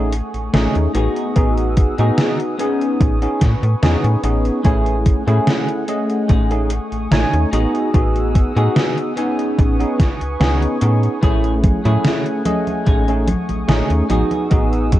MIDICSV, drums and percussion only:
0, 0, Header, 1, 2, 480
1, 0, Start_track
1, 0, Tempo, 821918
1, 796, Time_signature, 4, 2, 24, 8
1, 8757, End_track
2, 0, Start_track
2, 0, Title_t, "Drums"
2, 73, Note_on_c, 9, 42, 98
2, 131, Note_off_c, 9, 42, 0
2, 200, Note_on_c, 9, 42, 39
2, 258, Note_off_c, 9, 42, 0
2, 314, Note_on_c, 9, 38, 117
2, 314, Note_on_c, 9, 42, 64
2, 372, Note_off_c, 9, 38, 0
2, 372, Note_off_c, 9, 42, 0
2, 440, Note_on_c, 9, 42, 41
2, 498, Note_off_c, 9, 42, 0
2, 553, Note_on_c, 9, 42, 93
2, 611, Note_off_c, 9, 42, 0
2, 680, Note_on_c, 9, 42, 39
2, 738, Note_off_c, 9, 42, 0
2, 793, Note_on_c, 9, 42, 68
2, 796, Note_on_c, 9, 36, 110
2, 852, Note_off_c, 9, 42, 0
2, 854, Note_off_c, 9, 36, 0
2, 920, Note_on_c, 9, 42, 41
2, 978, Note_off_c, 9, 42, 0
2, 1033, Note_on_c, 9, 42, 97
2, 1035, Note_on_c, 9, 36, 109
2, 1091, Note_off_c, 9, 42, 0
2, 1094, Note_off_c, 9, 36, 0
2, 1158, Note_on_c, 9, 42, 41
2, 1217, Note_off_c, 9, 42, 0
2, 1272, Note_on_c, 9, 38, 117
2, 1272, Note_on_c, 9, 42, 71
2, 1330, Note_off_c, 9, 38, 0
2, 1330, Note_off_c, 9, 42, 0
2, 1400, Note_on_c, 9, 42, 39
2, 1459, Note_off_c, 9, 42, 0
2, 1515, Note_on_c, 9, 42, 101
2, 1573, Note_off_c, 9, 42, 0
2, 1643, Note_on_c, 9, 42, 41
2, 1701, Note_off_c, 9, 42, 0
2, 1755, Note_on_c, 9, 36, 112
2, 1755, Note_on_c, 9, 42, 65
2, 1814, Note_off_c, 9, 36, 0
2, 1814, Note_off_c, 9, 42, 0
2, 1881, Note_on_c, 9, 42, 39
2, 1939, Note_off_c, 9, 42, 0
2, 1993, Note_on_c, 9, 38, 62
2, 1993, Note_on_c, 9, 42, 98
2, 1996, Note_on_c, 9, 36, 102
2, 2051, Note_off_c, 9, 38, 0
2, 2051, Note_off_c, 9, 42, 0
2, 2054, Note_off_c, 9, 36, 0
2, 2121, Note_on_c, 9, 42, 39
2, 2179, Note_off_c, 9, 42, 0
2, 2235, Note_on_c, 9, 38, 119
2, 2235, Note_on_c, 9, 42, 69
2, 2293, Note_off_c, 9, 38, 0
2, 2293, Note_off_c, 9, 42, 0
2, 2361, Note_on_c, 9, 42, 38
2, 2420, Note_off_c, 9, 42, 0
2, 2473, Note_on_c, 9, 42, 94
2, 2532, Note_off_c, 9, 42, 0
2, 2600, Note_on_c, 9, 42, 40
2, 2658, Note_off_c, 9, 42, 0
2, 2713, Note_on_c, 9, 42, 70
2, 2715, Note_on_c, 9, 36, 117
2, 2772, Note_off_c, 9, 42, 0
2, 2774, Note_off_c, 9, 36, 0
2, 2840, Note_on_c, 9, 42, 41
2, 2898, Note_off_c, 9, 42, 0
2, 2954, Note_on_c, 9, 42, 91
2, 2956, Note_on_c, 9, 36, 107
2, 3013, Note_off_c, 9, 42, 0
2, 3014, Note_off_c, 9, 36, 0
2, 3082, Note_on_c, 9, 42, 38
2, 3140, Note_off_c, 9, 42, 0
2, 3195, Note_on_c, 9, 38, 124
2, 3195, Note_on_c, 9, 42, 68
2, 3254, Note_off_c, 9, 38, 0
2, 3254, Note_off_c, 9, 42, 0
2, 3320, Note_on_c, 9, 42, 39
2, 3379, Note_off_c, 9, 42, 0
2, 3434, Note_on_c, 9, 42, 98
2, 3493, Note_off_c, 9, 42, 0
2, 3560, Note_on_c, 9, 42, 40
2, 3619, Note_off_c, 9, 42, 0
2, 3674, Note_on_c, 9, 42, 62
2, 3676, Note_on_c, 9, 36, 116
2, 3733, Note_off_c, 9, 42, 0
2, 3735, Note_off_c, 9, 36, 0
2, 3801, Note_on_c, 9, 42, 38
2, 3859, Note_off_c, 9, 42, 0
2, 3913, Note_on_c, 9, 42, 96
2, 3971, Note_off_c, 9, 42, 0
2, 4041, Note_on_c, 9, 42, 38
2, 4100, Note_off_c, 9, 42, 0
2, 4155, Note_on_c, 9, 38, 125
2, 4155, Note_on_c, 9, 42, 69
2, 4214, Note_off_c, 9, 38, 0
2, 4214, Note_off_c, 9, 42, 0
2, 4283, Note_on_c, 9, 42, 40
2, 4342, Note_off_c, 9, 42, 0
2, 4397, Note_on_c, 9, 42, 92
2, 4455, Note_off_c, 9, 42, 0
2, 4524, Note_on_c, 9, 42, 41
2, 4583, Note_off_c, 9, 42, 0
2, 4638, Note_on_c, 9, 36, 117
2, 4638, Note_on_c, 9, 42, 65
2, 4696, Note_off_c, 9, 36, 0
2, 4696, Note_off_c, 9, 42, 0
2, 4763, Note_on_c, 9, 42, 39
2, 4822, Note_off_c, 9, 42, 0
2, 4877, Note_on_c, 9, 42, 89
2, 4878, Note_on_c, 9, 36, 106
2, 4935, Note_off_c, 9, 42, 0
2, 4936, Note_off_c, 9, 36, 0
2, 5003, Note_on_c, 9, 42, 38
2, 5062, Note_off_c, 9, 42, 0
2, 5117, Note_on_c, 9, 38, 127
2, 5117, Note_on_c, 9, 42, 65
2, 5175, Note_off_c, 9, 38, 0
2, 5175, Note_off_c, 9, 42, 0
2, 5243, Note_on_c, 9, 42, 38
2, 5301, Note_off_c, 9, 42, 0
2, 5356, Note_on_c, 9, 42, 91
2, 5414, Note_off_c, 9, 42, 0
2, 5484, Note_on_c, 9, 42, 39
2, 5542, Note_off_c, 9, 42, 0
2, 5598, Note_on_c, 9, 36, 119
2, 5600, Note_on_c, 9, 42, 62
2, 5657, Note_off_c, 9, 36, 0
2, 5658, Note_off_c, 9, 42, 0
2, 5726, Note_on_c, 9, 42, 36
2, 5784, Note_off_c, 9, 42, 0
2, 5838, Note_on_c, 9, 36, 99
2, 5838, Note_on_c, 9, 38, 64
2, 5838, Note_on_c, 9, 42, 89
2, 5896, Note_off_c, 9, 38, 0
2, 5896, Note_off_c, 9, 42, 0
2, 5897, Note_off_c, 9, 36, 0
2, 5964, Note_on_c, 9, 42, 36
2, 6022, Note_off_c, 9, 42, 0
2, 6078, Note_on_c, 9, 38, 120
2, 6078, Note_on_c, 9, 42, 60
2, 6136, Note_off_c, 9, 38, 0
2, 6136, Note_off_c, 9, 42, 0
2, 6204, Note_on_c, 9, 42, 36
2, 6262, Note_off_c, 9, 42, 0
2, 6314, Note_on_c, 9, 42, 89
2, 6373, Note_off_c, 9, 42, 0
2, 6443, Note_on_c, 9, 42, 38
2, 6501, Note_off_c, 9, 42, 0
2, 6556, Note_on_c, 9, 42, 62
2, 6556, Note_on_c, 9, 63, 26
2, 6557, Note_on_c, 9, 36, 107
2, 6615, Note_off_c, 9, 42, 0
2, 6615, Note_off_c, 9, 63, 0
2, 6616, Note_off_c, 9, 36, 0
2, 6681, Note_on_c, 9, 42, 35
2, 6739, Note_off_c, 9, 42, 0
2, 6796, Note_on_c, 9, 36, 106
2, 6796, Note_on_c, 9, 42, 85
2, 6796, Note_on_c, 9, 63, 60
2, 6854, Note_off_c, 9, 42, 0
2, 6854, Note_off_c, 9, 63, 0
2, 6855, Note_off_c, 9, 36, 0
2, 6922, Note_on_c, 9, 42, 36
2, 6922, Note_on_c, 9, 63, 36
2, 6980, Note_off_c, 9, 42, 0
2, 6980, Note_off_c, 9, 63, 0
2, 7035, Note_on_c, 9, 38, 119
2, 7035, Note_on_c, 9, 42, 61
2, 7035, Note_on_c, 9, 63, 26
2, 7093, Note_off_c, 9, 38, 0
2, 7093, Note_off_c, 9, 42, 0
2, 7093, Note_off_c, 9, 63, 0
2, 7160, Note_on_c, 9, 42, 35
2, 7218, Note_off_c, 9, 42, 0
2, 7274, Note_on_c, 9, 42, 88
2, 7274, Note_on_c, 9, 63, 63
2, 7332, Note_off_c, 9, 42, 0
2, 7332, Note_off_c, 9, 63, 0
2, 7400, Note_on_c, 9, 42, 37
2, 7400, Note_on_c, 9, 63, 34
2, 7459, Note_off_c, 9, 42, 0
2, 7459, Note_off_c, 9, 63, 0
2, 7514, Note_on_c, 9, 42, 59
2, 7514, Note_on_c, 9, 63, 25
2, 7516, Note_on_c, 9, 36, 113
2, 7572, Note_off_c, 9, 42, 0
2, 7572, Note_off_c, 9, 63, 0
2, 7574, Note_off_c, 9, 36, 0
2, 7640, Note_on_c, 9, 42, 37
2, 7698, Note_off_c, 9, 42, 0
2, 7753, Note_on_c, 9, 42, 91
2, 7753, Note_on_c, 9, 63, 65
2, 7812, Note_off_c, 9, 42, 0
2, 7812, Note_off_c, 9, 63, 0
2, 7878, Note_on_c, 9, 42, 36
2, 7878, Note_on_c, 9, 63, 32
2, 7937, Note_off_c, 9, 42, 0
2, 7937, Note_off_c, 9, 63, 0
2, 7993, Note_on_c, 9, 38, 112
2, 7993, Note_on_c, 9, 42, 62
2, 7993, Note_on_c, 9, 63, 25
2, 8051, Note_off_c, 9, 38, 0
2, 8051, Note_off_c, 9, 42, 0
2, 8051, Note_off_c, 9, 63, 0
2, 8118, Note_on_c, 9, 42, 37
2, 8177, Note_off_c, 9, 42, 0
2, 8233, Note_on_c, 9, 42, 89
2, 8233, Note_on_c, 9, 63, 61
2, 8291, Note_off_c, 9, 42, 0
2, 8291, Note_off_c, 9, 63, 0
2, 8357, Note_on_c, 9, 42, 37
2, 8357, Note_on_c, 9, 63, 35
2, 8416, Note_off_c, 9, 42, 0
2, 8416, Note_off_c, 9, 63, 0
2, 8473, Note_on_c, 9, 42, 62
2, 8473, Note_on_c, 9, 63, 28
2, 8476, Note_on_c, 9, 36, 107
2, 8531, Note_off_c, 9, 42, 0
2, 8531, Note_off_c, 9, 63, 0
2, 8534, Note_off_c, 9, 36, 0
2, 8601, Note_on_c, 9, 42, 37
2, 8659, Note_off_c, 9, 42, 0
2, 8714, Note_on_c, 9, 42, 84
2, 8714, Note_on_c, 9, 63, 63
2, 8717, Note_on_c, 9, 36, 99
2, 8757, Note_off_c, 9, 36, 0
2, 8757, Note_off_c, 9, 42, 0
2, 8757, Note_off_c, 9, 63, 0
2, 8757, End_track
0, 0, End_of_file